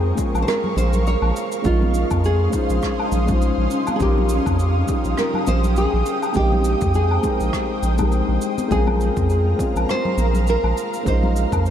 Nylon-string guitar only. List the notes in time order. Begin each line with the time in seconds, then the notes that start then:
Already playing: G#4
0.42 C5
0.48 A#4
0.78 C5
1.07 C#5
1.66 F4
2.26 G#4
3.96 G#4
4.02 G4
5.19 A#4
5.48 C5
5.78 G#4
6.37 G4
6.95 G#4
8.72 G#4
9.90 C5
10.50 A#4
11.08 C5